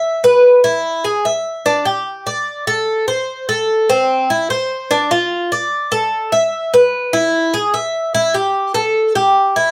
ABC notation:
X:1
M:4/4
L:1/8
Q:1/4=148
K:Am
V:1 name="Cuban tres"
e B2 E2 ^G e2 | D G2 d2 A2 c- | c A2 C2 E c2 | D F2 d2 A2 e- |
e B2 E2 ^G e2 | E G2 A2 G2 E |]